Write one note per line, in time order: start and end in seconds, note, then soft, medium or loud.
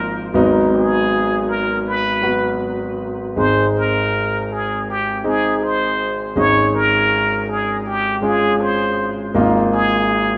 0.00 0.30 G#1 medium
0.00 0.31 G#2 medium
0.00 0.28 F3 medium
0.00 0.29 A#3 medium
0.00 0.29 D#4 medium
0.00 0.17 A#4 medium
0.34 3.32 G#1 medium
0.34 3.32 G#2 medium
0.34 1.77 F#3 medium
0.34 1.77 B3 medium
0.34 1.78 D#4 medium
0.75 1.50 G#4 medium
1.49 1.88 A#4 medium
1.87 2.62 B4 medium
2.21 3.30 F#3 medium
2.21 3.30 B3 medium
2.21 3.31 F#4 medium
3.36 6.33 G#1 medium
3.36 6.33 G#2 medium
3.36 4.79 G#3 medium
3.36 4.80 C4 medium
3.36 4.80 D#4 medium
3.36 3.73 C5 medium
3.77 4.54 A#4 medium
4.52 4.88 G#4 medium
4.90 5.27 G4 medium
5.24 6.31 G#3 medium
5.24 6.31 C4 medium
5.24 6.31 D#4 medium
5.24 5.65 G#4 medium
5.63 6.19 C5 medium
6.36 9.30 G#1 medium
6.36 9.30 G#2 medium
6.36 7.78 G#3 medium
6.36 7.78 C#4 medium
6.36 7.78 D#4 medium
6.36 6.76 C#5 loud
6.75 7.51 A#4 medium
7.49 7.85 G#4 medium
7.86 8.25 G4 medium
8.22 9.28 G#3 medium
8.22 9.28 C#4 medium
8.22 9.29 F4 medium
8.22 8.63 G#4 medium
8.61 9.16 C5 medium
9.34 10.38 G#1 medium
9.34 10.38 G#2 medium
9.34 10.38 A#3 medium
9.34 10.38 D#4 medium
9.34 10.38 F4 medium
9.73 10.38 G#4 medium